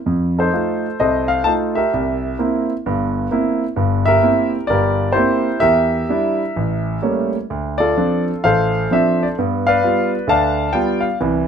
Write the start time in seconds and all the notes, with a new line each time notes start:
0.06 F2
0.38 D#4 A4 C5
0.53 A3 D#4 F4
1.00 C2 A4 C5 D#5
1.28 F5
1.44 A3 D#4 F4 A5
1.75 G4 A#4 E5
1.94 C2
2.39 A#3 C4 E4
2.86 G1 G2
3.31 A#3 C4 E4
3.76 G1 G2
4.06 G4 A#4 E5
4.23 A#3 C4 E4
4.67 G1 G2 G4 A#4 D5
5.12 E4 G4 C5
5.17 A#3 C4
5.60 E2 G4 A#4 E5
6.09 G3 D4 E4
6.56 A1
7.02 G3 A3 A#3 C#4
7.50 D2
7.78 F4 A4 D5
7.97 F3 C4 D4
8.44 A1 A4 C5 F5
8.91 F3 C4 D4 E5
9.23 D5
9.38 G2 B3
9.67 B4 D5 F5
9.84 G3 B3 F4
10.27 D2 D3 D5 F5 A5
10.73 G3 B3 F4 G5
11.00 F5
11.20 C2 E3